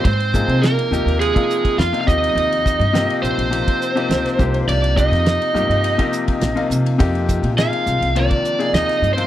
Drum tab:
RD |xx-xxx-xxx-xxx-x|xx-xxx-xxx-xxx-x|xx-xxx-xxx-xxx-x|xx-xxx-xxx-xxx-x|
HH |--p---p---p---p-|--p---p---p---p-|--p---p---p---p-|--p---p---p---p-|
SD |----o-------o---|----o-------oo--|---oo-------o---|----o-------oo--|
BD |o-o------o-o--o-|--o------o----o-|--o------o-o----|o-o------o------|